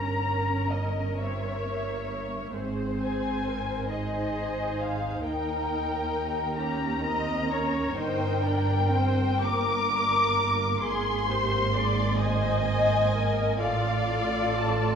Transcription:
0.00 2.51 G1 soft
0.00 2.51 G2 soft
0.00 1.16 C#4 soft
0.00 1.17 A#4 soft
0.00 2.52 A#4 soft
0.00 0.70 A#5 medium
0.71 1.18 D#5 medium
1.19 1.65 C4 soft
1.19 2.53 C#5 medium
1.19 2.55 E5 soft
1.65 2.09 A#3 soft
2.10 2.54 A#3 soft
2.54 5.22 G#1 soft
2.54 5.22 G#2 soft
2.54 3.91 C4 soft
2.54 3.00 G#4 soft
2.54 3.88 C5 medium
3.01 3.45 G#4 soft
3.01 3.87 G#5 medium
3.46 3.91 A#4 soft
3.91 6.55 D#4 soft
3.91 5.26 G#4 soft
3.91 5.25 C5 soft
3.91 4.79 D#5 medium
4.82 5.26 F5 medium
5.25 7.94 D#2 medium
5.25 6.55 A#4 medium
5.25 6.56 A#4 medium
5.25 6.56 G5 medium
6.58 7.03 C#4 medium
6.58 7.04 G4 medium
6.58 7.91 A#4 medium
6.58 7.95 A#5 medium
7.04 7.48 C4 medium
7.04 7.48 D#5 medium
7.49 7.95 C#4 medium
7.49 7.95 C#5 medium
7.94 10.79 G1 medium
7.94 10.79 G2 medium
7.94 8.41 D#4 medium
7.94 10.78 A#4 medium
7.94 8.43 C5 medium
7.94 9.40 G5 medium
8.42 8.93 D4 medium
8.42 8.93 A#4 medium
8.91 9.41 C4 medium
8.91 9.43 C5 medium
9.41 13.61 A#3 medium
9.41 10.83 A#4 medium
9.41 10.82 D6 loud
10.81 13.61 G#1 medium
10.81 13.62 G#2 medium
10.81 11.27 G#4 medium
10.81 11.28 G#4 medium
10.81 12.20 C6 medium
11.29 11.74 G4 medium
11.29 11.75 C5 medium
11.74 12.20 G#4 medium
11.74 12.20 D5 medium
12.18 12.64 C5 medium
12.18 13.60 D#5 medium
12.18 13.58 G#5 medium
12.65 13.12 C5 medium
13.12 13.60 A#4 medium
13.59 14.95 A1 medium
13.59 14.95 A2 medium
13.59 14.95 F4 medium
13.59 14.95 A4 medium
13.59 14.95 D5 medium
13.59 14.55 F5 medium
14.58 14.95 A5 medium

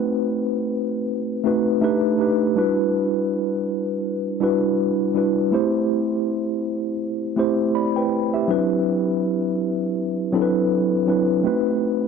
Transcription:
0.00 0.98 A3 medium
0.00 0.99 C4 medium
0.00 0.99 D#4 medium
0.00 1.00 F#4 medium
0.00 1.03 B4 medium
1.44 1.80 A3 medium
1.44 1.82 C4 medium
1.44 1.81 D#4 medium
1.44 1.83 F#4 medium
1.44 1.83 B4 medium
1.81 2.16 A3 medium
1.81 2.17 D4 medium
1.81 2.17 D#4 medium
1.81 2.18 G4 medium
1.81 2.18 B4 loud
2.18 2.53 A3 medium
2.18 2.54 D4 medium
2.18 2.54 D#4 medium
2.18 2.55 G4 medium
2.18 2.55 B4 medium
2.55 3.95 G3 medium
2.55 3.95 D4 medium
2.55 3.96 E4 medium
2.55 3.96 F#4 medium
2.55 3.96 B4 medium
4.40 5.10 G3 medium
4.40 5.11 D4 medium
4.40 5.11 E4 medium
4.40 5.12 F#4 medium
4.40 5.12 B4 medium
5.14 5.50 G3 medium
5.14 5.50 D4 medium
5.14 5.51 E4 medium
5.14 5.51 F#4 medium
5.14 5.51 B4 medium
5.51 6.91 A3 medium
5.51 6.91 C4 medium
5.51 6.92 E4 medium
5.51 6.92 G4 medium
5.51 6.92 C5 medium
7.36 8.06 A3 medium
7.36 8.07 C4 medium
7.36 8.07 E4 medium
7.36 7.75 G4 medium
7.36 7.76 C5 medium
7.75 7.96 D5 medium
7.75 7.95 B5 medium
7.96 8.32 B4 medium
7.96 8.32 G5 medium
8.34 8.69 G4 medium
8.34 8.69 E5 medium
8.48 9.87 F#3 medium
8.48 9.88 C4 medium
8.48 9.88 D4 medium
8.48 9.88 E4 medium
8.48 9.89 B4 medium
10.32 11.03 F#3 medium
10.32 11.03 C4 medium
10.32 11.04 D4 medium
10.32 11.04 E4 medium
10.32 10.42 A4 medium
10.42 11.08 B4 medium
11.07 11.42 F#3 medium
11.07 11.43 C4 medium
11.07 11.43 D4 medium
11.07 11.43 E4 medium
11.07 11.44 B4 medium
11.44 12.08 A3 medium
11.44 12.08 C4 medium
11.44 12.08 D#4 medium
11.44 12.08 F#4 medium
11.44 12.08 B4 medium

